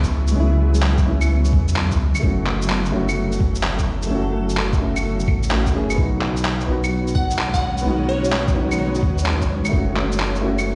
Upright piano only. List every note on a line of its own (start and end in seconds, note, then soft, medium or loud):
0.00 0.32 G#3 medium
0.00 0.36 C#4 medium
0.00 0.40 E4 loud
0.32 1.02 G#3 loud
0.32 1.04 C#4 medium
0.40 1.06 E4 loud
1.04 1.14 G#3 medium
1.04 1.15 C#4 medium
1.04 1.16 E4 medium
2.20 2.90 A3 medium
2.20 2.92 C#4 medium
2.27 2.94 F#4 loud
2.92 3.02 A3 medium
2.92 3.03 C#4 medium
2.92 3.04 F#4 loud
4.07 4.77 A3 medium
4.07 4.79 C#4 medium
4.15 4.81 F#4 loud
4.79 4.89 A3 medium
4.79 4.90 C#4 medium
4.79 4.91 F#4 loud
5.49 5.71 A3 medium
5.49 5.73 C#4 medium
5.53 5.74 F#4 loud
5.72 5.95 A3 loud
5.72 5.96 C#4 medium
5.72 5.97 G#4 loud
5.94 6.64 B3 medium
5.98 6.66 D#4 medium
6.02 6.68 F#4 loud
6.67 6.77 B3 medium
6.67 6.78 D#4 medium
6.67 6.79 F#4 loud
7.81 8.52 B3 medium
7.86 8.54 D#4 medium
7.86 8.56 F#4 loud
8.54 8.64 B3 medium
8.54 8.65 D#4 medium
8.58 8.66 F#4 loud
9.69 10.39 A3 medium
9.73 10.41 C#4 medium
9.73 10.43 F#4 loud
10.41 10.52 A3 medium
10.41 10.53 C#4 medium
10.45 10.54 F#4 loud